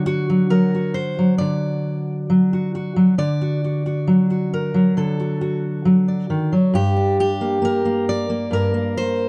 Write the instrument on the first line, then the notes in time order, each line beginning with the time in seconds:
steel-string acoustic guitar
Already playing: D3 F#3
0.06 F#4
0.30 F#3
0.50 F#3 A#4
0.75 F#4
0.94 C5
1.19 F#3
1.38 D3 D5
2.30 F#3
2.53 F#4
2.75 F#4
2.96 F#3
3.18 D3 D5
3.41 F#4
3.64 F#4
3.86 F#4
4.07 F#3
4.30 F#4
4.54 A#4
4.74 F#3
4.97 D3 A4
5.20 F#4
5.41 F#4
5.85 F#3
6.08 D5
6.30 D#3
6.52 F#3
6.74 G2 G4
6.96 D4
7.20 G4
7.41 A#3
7.62 A#3 A#4
7.85 A#3
8.09 D5
8.30 A#3
8.51 G2 A#4
8.74 A#3
8.97 C5